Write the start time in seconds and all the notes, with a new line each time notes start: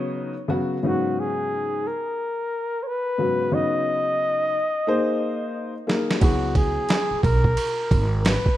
Already playing: C#3 F#3 B3 D#4 C#5
0.48 C#3 F#3 B3 F#4
0.83 G#2 C#3 F#3 B3 D#4 F#4
1.20 G#4
1.87 A#4
2.83 C#5
2.87 B4
3.18 G#2 C#3 F#3 B3 F#4
3.52 C#3 F#3 B3 D#4 D#5
4.87 A#3 D#4 G#4 C5
5.87 A#3 D#4 G#4 A#4, snare
6.11 snare
6.20 C#2 F#3 B3 E4 F#4 G#4, kick, ride
6.55 G#4, kick, ride
6.89 snare, hi-hat pedal, ride
7.11 muted upright bass stroke
7.23 B1 A#4, kick, ride
7.44 kick
7.57 ride
7.91 G#1, kick, ride
8.21 A#4, hi-hat pedal, ride
8.26 B4, snare
8.46 kick